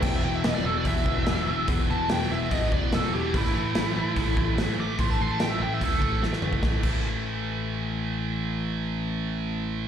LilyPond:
<<
  \new Staff \with { instrumentName = "Lead electric guitar" } { \time 4/4 \key e \phrygian \tempo 4 = 145 g''16 e''16 g''16 e''16 dis''16 d''16 a'16 d''16 e''2 | r8 a''8 g''8 e''8 dis''8 d''8 a'8 g'8 | e'2. r8 d'''8 | c'''16 a''16 c'''16 a''16 g''16 e''16 g''16 e''16 a'4 r4 |
r1 | r1 | }
  \new Staff \with { instrumentName = "Distorted electric guitar" } { \clef bass \time 4/4 \key e \phrygian <e, b, e>8 <e, b, e>8 <e, b, e>8 <e, b, e>8 <e, b, e>8 <e, b, e>8 <e, b, e>8 <e, b, e>8 | <e, b, e>8 <e, b, e>8 <b, e>8 <e, b, e>8 <e, b, e>8 <e, b, e>8 <e, b, e>8 <e, b, e>8 | <a, e a>8 <a, e a>8 <a, e a>8 <a, e a>8 <a, e a>8 <a, e a>8 <a, e a>8 <a, e a>8 | <a, e a>8 <a, e a>8 <a, e a>8 <a, e a>8 <a, e a>8 <a, e a>8 <a, e a>8 <a, e a>8 |
<a, e a>8 <a, e a>2.~ <a, e a>8~ | <a, e a>1 | }
  \new Staff \with { instrumentName = "Overdriven electric guitar" } { \clef bass \time 4/4 \key e \phrygian <e, b, e>8 <e, b, e>8 <e, b, e>8 <e, b, e>8 <e, b, e>8 <e, b, e>8 <e, b, e>8 <e, b, e>8 | <e, b, e>8 <e, b, e>8 <e, b, e>8 <e, b, e>8 <e, b, e>8 <e, b, e>8 <e, b, e>8 <e, b, e>8 | <a, e a>8 <a, e a>8 <a, e a>8 <a, e a>8 <a, e a>8 <a, e a>8 <a, e a>8 <a, e a>8 | <a, e a>8 <a, e a>8 <a, e a>8 <a, e a>8 <a, e a>8 <a, e a>8 <a, e a>8 <a, e a>8 |
<a, e a>8 <a, e a>2.~ <a, e a>8~ | <a, e a>1 | }
  \new Staff \with { instrumentName = "Picked electric bass" } { \clef bass \time 4/4 \key e \phrygian e,,8 e,,8 e,,8 e,,8 e,,8 e,,8 e,,8 e,,8 | e,,8 e,,8 e,,8 e,,8 a,,8 e,,8 e,,8 e,,8 | a,,8 a,,8 a,,8 a,,8 a,,8 a,,8 a,,8 a,,8 | a,,8 a,,8 a,,8 a,,8 d,8 a,,8 a,,8 a,,8 |
a,,8 a,,2.~ a,,8~ | a,,1 | }
  \new DrumStaff \with { instrumentName = "Drums" } \drummode { \time 4/4 <cymc bd>4 <hho sn>4 <hho bd>8 bd8 <hho sn>4 | <hho bd>4 <hho sn>4 <hho bd>8 bd8 <hho sn>4 | <hho bd>16 sn8. <hho sn>4 <hho bd>8 bd8 <hho sn>4 | <hho bd>4 <hho sn>4 <hho bd>8 bd8 sn16 sn16 toml16 bd16 |
<bd sn>8 <cymc bd>8 r4 r4 r4 | r4 r4 r4 r4 | }
>>